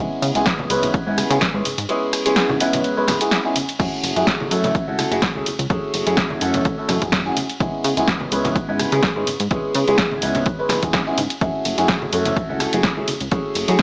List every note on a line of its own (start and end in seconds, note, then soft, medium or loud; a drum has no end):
0.00 0.32 G#3 loud
0.00 0.32 B3 medium
0.00 0.32 C#4 medium
0.00 0.32 E4 medium
0.00 0.32 G#4 loud
0.22 0.32 C#3 loud
0.22 open hi-hat loud
0.22 ride medium
0.22 shaker loud
0.35 0.43 C#2 medium
0.35 0.67 G#3 loud
0.35 0.67 B3 medium
0.35 0.67 C#4 medium
0.35 0.68 E4 medium
0.35 0.68 G#4 loud
0.35 closed hi-hat medium
0.35 shaker medium
0.45 kick loud
0.45 snare loud
0.45 closed hi-hat medium
0.45 shaker soft
0.58 high conga medium
0.58 low conga medium
0.70 1.01 C#2 loud
0.70 1.03 G#3 loud
0.70 1.03 B3 medium
0.70 1.04 C#4 medium
0.70 1.04 E4 medium
0.70 1.04 B4 loud
0.70 open hi-hat loud
0.70 ride medium
0.70 shaker loud
0.83 closed hi-hat medium
0.83 high conga medium
0.83 low conga medium
0.83 shaker medium
0.94 kick loud
0.94 closed hi-hat medium
0.94 shaker soft
1.06 1.24 G#2 medium
1.06 1.28 G#3 medium
1.06 1.28 B3 medium
1.06 1.28 C#4 medium
1.06 1.28 E4 medium
1.06 1.28 B4 loud
1.18 cross-stick medium
1.18 open hi-hat loud
1.18 ride medium
1.18 high conga medium
1.18 shaker loud
1.30 1.39 C#3 loud
1.30 1.46 G#3 medium
1.30 1.46 B3 medium
1.30 1.46 C#4 medium
1.30 1.46 E4 medium
1.30 1.46 G#4 medium
1.30 closed hi-hat medium
1.30 shaker soft
1.41 kick loud
1.41 snare loud
1.41 closed hi-hat medium
1.41 shaker soft
1.54 1.62 G#2 medium
1.54 1.63 G#3 medium
1.54 1.63 B3 medium
1.54 1.63 C#4 medium
1.54 1.63 E4 medium
1.54 1.63 G#4 loud
1.65 1.75 G#2 soft
1.65 open hi-hat loud
1.65 ride medium
1.65 high conga medium
1.65 shaker loud
1.78 1.86 G#2 medium
1.78 closed hi-hat medium
1.78 shaker medium
1.89 2.22 G#3 medium
1.89 2.23 B3 medium
1.89 2.23 C#4 medium
1.89 2.23 E4 medium
1.89 2.23 G#4 loud
1.89 closed hi-hat medium
1.89 shaker soft
2.13 cross-stick medium
2.13 open hi-hat loud
2.13 ride medium
2.13 shaker medium
2.25 2.58 G#3 loud
2.25 2.58 B3 medium
2.25 2.58 C#4 medium
2.25 2.58 E4 medium
2.25 2.58 G#4 loud
2.25 closed hi-hat medium
2.25 shaker medium
2.36 snare loud
2.36 closed hi-hat medium
2.36 shaker soft
2.49 high conga medium
2.49 low conga medium
2.60 2.94 G#3 loud
2.60 2.94 B3 medium
2.60 2.94 C#4 medium
2.60 2.94 E4 medium
2.60 2.94 B4 loud
2.60 open hi-hat loud
2.60 ride medium
2.60 shaker medium
2.73 closed hi-hat medium
2.73 high conga medium
2.73 low conga medium
2.73 shaker medium
2.84 closed hi-hat medium
2.84 shaker soft
2.97 3.18 G#3 medium
2.97 3.18 B3 medium
2.97 3.18 C#4 medium
2.97 3.18 E4 medium
2.97 3.18 B4 loud
3.08 cross-stick medium
3.08 snare medium
3.08 open hi-hat loud
3.08 ride medium
3.08 high conga medium
3.08 low conga medium
3.08 shaker loud
3.20 3.36 G#3 medium
3.20 3.36 B3 medium
3.20 3.36 C#4 medium
3.20 3.36 E4 medium
3.20 3.36 G#4 loud
3.20 closed hi-hat medium
3.20 shaker medium
3.31 snare loud
3.31 closed hi-hat medium
3.31 shaker soft
3.44 3.54 G#3 medium
3.44 3.54 B3 medium
3.44 3.54 C#4 medium
3.44 3.54 E4 medium
3.44 3.54 G#4 loud
3.56 open hi-hat loud
3.56 ride medium
3.56 high conga medium
3.56 shaker loud
3.69 closed hi-hat medium
3.69 shaker medium
3.79 3.89 F#2 loud
3.79 4.13 A3 medium
3.79 4.13 C#4 medium
3.79 4.13 E4 medium
3.79 4.13 F#4 medium
3.79 4.13 G#4 loud
3.79 kick loud
3.79 closed hi-hat medium
3.79 crash medium
3.79 shaker soft
4.03 4.13 F#1 loud
4.03 open hi-hat loud
4.03 ride medium
4.03 shaker loud
4.16 4.24 F#2 medium
4.16 4.48 A3 loud
4.16 4.48 C#4 medium
4.16 4.48 E4 medium
4.16 4.48 F#4 medium
4.16 4.49 G#4 loud
4.16 closed hi-hat medium
4.16 shaker medium
4.27 kick loud
4.27 snare loud
4.27 closed hi-hat medium
4.27 shaker soft
4.40 high conga medium
4.40 low conga medium
4.51 4.82 F#2 loud
4.51 4.84 A3 medium
4.51 4.84 C#4 medium
4.51 4.85 E4 medium
4.51 4.85 F#4 medium
4.51 4.85 A4 loud
4.51 open hi-hat loud
4.51 ride medium
4.51 shaker medium
4.64 closed hi-hat medium
4.64 high conga medium
4.64 low conga medium
4.64 shaker medium
4.75 kick loud
4.75 closed hi-hat medium
4.75 shaker soft
4.87 5.05 C#2 medium
4.87 5.09 A3 medium
4.87 5.09 C#4 medium
4.87 5.09 E4 medium
4.87 5.09 F#4 medium
4.87 5.09 A4 loud
4.98 cross-stick medium
4.98 open hi-hat loud
4.98 ride medium
4.98 high conga medium
4.98 shaker loud
5.11 5.20 F#1 loud
5.11 5.27 A3 medium
5.11 5.27 C#4 medium
5.11 5.27 E4 medium
5.11 5.27 F#4 medium
5.11 5.27 G#4 medium
5.11 closed hi-hat medium
5.11 shaker medium
5.22 kick loud
5.22 snare loud
5.22 closed hi-hat medium
5.22 shaker soft
5.35 5.44 C#2 medium
5.35 5.44 A3 medium
5.35 5.44 C#4 medium
5.35 5.44 E4 medium
5.35 5.44 F#4 medium
5.35 5.44 G#4 loud
5.46 open hi-hat loud
5.46 ride medium
5.46 high conga medium
5.46 shaker loud
5.59 5.67 C#2 medium
5.59 closed hi-hat medium
5.59 shaker medium
5.70 5.80 F#2 loud
5.70 6.03 A3 loud
5.70 6.03 C#4 medium
5.70 6.04 E4 medium
5.70 6.04 F#4 medium
5.70 6.04 G#4 loud
5.70 kick loud
5.70 closed hi-hat medium
5.70 shaker soft
5.94 6.03 F#1 loud
5.94 open hi-hat loud
5.94 ride medium
5.94 shaker medium
6.06 6.15 F#2 medium
6.06 6.39 A3 loud
6.06 6.39 C#4 medium
6.06 6.39 E4 medium
6.06 6.39 F#4 medium
6.06 6.39 G#4 loud
6.06 closed hi-hat medium
6.06 shaker medium
6.17 kick loud
6.17 snare loud
6.17 closed hi-hat medium
6.17 shaker soft
6.30 high conga medium
6.30 low conga medium
6.41 6.67 F#2 loud
6.41 6.75 A3 medium
6.41 6.75 C#4 medium
6.41 6.75 E4 medium
6.41 6.75 F#4 medium
6.41 6.75 A4 loud
6.41 open hi-hat loud
6.41 ride medium
6.41 shaker medium
6.54 closed hi-hat medium
6.54 high conga medium
6.54 low conga medium
6.54 shaker medium
6.65 6.75 B2 loud
6.65 kick loud
6.65 closed hi-hat medium
6.65 shaker soft
6.78 6.99 A3 medium
6.78 6.99 C#4 medium
6.78 6.99 E4 medium
6.78 6.99 F#4 medium
6.78 6.99 A4 loud
6.88 6.99 F#2 medium
6.88 cross-stick medium
6.88 open hi-hat loud
6.88 ride medium
6.88 high conga medium
6.88 low conga loud
6.88 shaker loud
7.01 7.32 F#2 loud
7.01 7.17 A3 medium
7.01 7.17 C#4 medium
7.01 7.17 E4 medium
7.01 7.17 G#4 medium
7.01 kick medium
7.01 closed hi-hat medium
7.01 shaker soft
7.12 kick loud
7.12 snare loud
7.12 closed hi-hat medium
7.12 shaker soft
7.25 7.35 A3 medium
7.25 7.35 C#4 medium
7.25 7.35 E4 medium
7.25 7.35 F#4 medium
7.25 7.35 G#4 loud
7.37 open hi-hat loud
7.37 ride medium
7.37 high conga medium
7.37 shaker medium
7.49 closed hi-hat medium
7.49 shaker medium
7.60 7.70 C#2 loud
7.60 7.94 G#3 loud
7.60 7.94 B3 medium
7.60 7.94 C#4 medium
7.60 7.94 E4 medium
7.60 7.94 G#4 loud
7.60 kick loud
7.60 closed hi-hat medium
7.60 shaker soft
7.84 7.94 C#3 loud
7.84 open hi-hat loud
7.84 ride medium
7.84 shaker medium
7.97 8.05 C#2 medium
7.97 8.29 G#3 loud
7.97 8.29 B3 loud
7.97 8.29 C#4 medium
7.97 8.29 E4 medium
7.97 8.29 G#4 loud
7.97 closed hi-hat medium
7.97 shaker soft
8.08 kick loud
8.08 snare loud
8.08 closed hi-hat medium
8.08 shaker soft
8.20 high conga medium
8.20 low conga medium
8.31 8.63 C#2 medium
8.31 8.65 G#3 loud
8.31 8.65 B3 medium
8.31 8.65 C#4 medium
8.31 8.66 E4 medium
8.31 8.66 B4 loud
8.31 open hi-hat loud
8.31 ride medium
8.31 shaker medium
8.44 closed hi-hat medium
8.44 high conga medium
8.44 low conga medium
8.44 shaker medium
8.55 kick loud
8.55 closed hi-hat medium
8.55 shaker soft
8.68 8.86 G#2 medium
8.68 8.90 G#3 medium
8.68 8.90 B3 medium
8.68 8.90 C#4 medium
8.68 8.90 E4 medium
8.68 8.90 B4 loud
8.79 cross-stick medium
8.79 open hi-hat loud
8.79 ride medium
8.79 high conga medium
8.79 shaker medium
8.92 9.01 C#3 loud
8.92 9.07 G#3 medium
8.92 9.08 B3 medium
8.92 9.08 C#4 medium
8.92 9.08 E4 medium
8.92 9.08 G#4 loud
8.92 closed hi-hat medium
8.92 shaker medium
9.03 kick loud
9.03 snare loud
9.03 closed hi-hat medium
9.03 shaker soft
9.15 9.24 G#2 medium
9.15 9.25 G#3 medium
9.15 9.25 B3 medium
9.15 9.25 C#4 medium
9.15 9.25 E4 medium
9.15 9.25 G#4 loud
9.27 9.38 G#2 soft
9.27 open hi-hat loud
9.27 ride medium
9.27 high conga medium
9.27 shaker medium
9.40 9.48 G#2 medium
9.40 closed hi-hat medium
9.40 shaker medium
9.50 9.61 C#2 loud
9.50 9.84 G#3 loud
9.50 9.84 B3 medium
9.50 9.85 C#4 medium
9.50 9.85 E4 medium
9.50 9.85 G#4 loud
9.50 kick loud
9.50 closed hi-hat medium
9.50 shaker soft
9.75 9.84 C#3 loud
9.75 open hi-hat loud
9.75 ride medium
9.75 shaker medium
9.87 9.96 C#2 medium
9.87 10.20 G#3 loud
9.87 10.20 B3 medium
9.87 10.20 C#4 medium
9.87 10.20 E4 medium
9.87 10.20 G#4 loud
9.87 closed hi-hat medium
9.87 shaker medium
9.98 kick loud
9.98 snare loud
9.98 closed hi-hat medium
9.98 shaker soft
10.11 high conga medium
10.11 low conga medium
10.22 10.48 C#2 loud
10.22 10.56 G#3 medium
10.22 10.56 B3 medium
10.22 10.56 C#4 medium
10.22 10.56 E4 medium
10.22 10.56 B4 loud
10.22 open hi-hat loud
10.22 ride medium
10.22 shaker medium
10.34 closed hi-hat medium
10.34 high conga medium
10.34 low conga medium
10.34 shaker medium
10.46 10.56 F#2 loud
10.46 kick loud
10.46 closed hi-hat medium
10.46 shaker soft
10.59 10.80 G#3 medium
10.59 10.80 B3 medium
10.59 10.80 C#4 medium
10.59 10.80 E4 medium
10.59 10.80 B4 loud
10.69 cross-stick medium
10.69 snare medium
10.69 open hi-hat loud
10.69 ride medium
10.69 high conga medium
10.69 low conga medium
10.69 shaker medium
10.82 10.91 E2 loud
10.82 10.98 G#3 medium
10.82 10.98 B3 medium
10.82 10.98 C#4 medium
10.82 10.98 E4 medium
10.82 10.98 G#4 medium
10.82 kick medium
10.82 closed hi-hat medium
10.82 shaker medium
10.93 kick loud
10.93 snare loud
10.93 closed hi-hat medium
10.93 shaker soft
11.06 11.16 G#3 medium
11.06 11.16 B3 medium
11.06 11.16 C#4 medium
11.06 11.16 E4 medium
11.06 11.16 G#4 loud
11.18 11.27 G#2 medium
11.18 open hi-hat loud
11.18 ride medium
11.18 high conga medium
11.18 shaker medium
11.30 closed hi-hat medium
11.30 shaker soft
11.41 11.51 F#2 loud
11.41 11.75 A3 medium
11.41 11.75 C#4 medium
11.41 11.75 E4 medium
11.41 11.75 F#4 medium
11.41 11.75 G#4 loud
11.41 kick loud
11.41 closed hi-hat medium
11.41 shaker soft
11.65 11.75 F#1 loud
11.65 open hi-hat loud
11.65 ride medium
11.65 shaker medium
11.78 11.86 F#2 medium
11.78 12.10 A3 loud
11.78 12.10 C#4 loud
11.78 12.10 E4 medium
11.78 12.10 F#4 medium
11.78 12.10 G#4 loud
11.78 closed hi-hat medium
11.78 shaker medium
11.88 kick loud
11.88 snare loud
11.88 closed hi-hat medium
11.88 shaker soft
12.02 high conga medium
12.02 low conga medium
12.12 12.44 F#2 loud
12.12 12.46 A3 medium
12.12 12.46 C#4 medium
12.12 12.46 E4 medium
12.12 12.46 F#4 medium
12.12 12.47 A4 loud
12.12 open hi-hat loud
12.12 ride medium
12.12 shaker medium
12.25 closed hi-hat medium
12.25 high conga medium
12.25 low conga medium
12.25 shaker medium
12.36 kick loud
12.36 closed hi-hat medium
12.36 shaker soft
12.49 12.67 C#2 medium
12.49 12.70 A3 medium
12.49 12.71 C#4 medium
12.49 12.71 E4 medium
12.49 12.71 F#4 medium
12.49 12.71 A4 loud
12.60 cross-stick medium
12.60 open hi-hat loud
12.60 ride medium
12.60 high conga medium
12.60 shaker medium
12.73 12.82 F#1 loud
12.73 12.88 A3 medium
12.73 12.88 C#4 medium
12.73 12.88 E4 medium
12.73 12.89 F#4 medium
12.73 12.89 G#4 medium
12.73 closed hi-hat medium
12.73 shaker soft
12.83 kick loud
12.83 snare loud
12.83 closed hi-hat medium
12.96 13.05 C#2 medium
12.96 13.06 A3 medium
12.96 13.06 C#4 medium
12.96 13.06 E4 medium
12.96 13.06 F#4 medium
12.96 13.06 G#4 loud
13.08 13.18 C#2 soft
13.08 open hi-hat loud
13.08 ride medium
13.08 high conga medium
13.08 shaker medium
13.21 13.29 C#2 medium
13.21 closed hi-hat medium
13.21 shaker medium
13.31 13.41 F#2 loud
13.31 13.65 A3 medium
13.31 13.65 C#4 medium
13.31 13.65 E4 medium
13.31 13.65 F#4 medium
13.31 13.65 G#4 loud
13.31 kick loud
13.31 closed hi-hat medium
13.31 shaker soft
13.54 13.65 F#1 loud
13.54 open hi-hat loud
13.54 ride medium
13.54 shaker medium
13.68 13.77 F#2 loud
13.68 13.82 A3 loud
13.68 13.82 C#4 medium
13.68 13.82 E4 medium
13.68 13.82 F#4 medium
13.68 13.82 G#4 loud
13.68 closed hi-hat medium
13.68 shaker medium
13.79 snare loud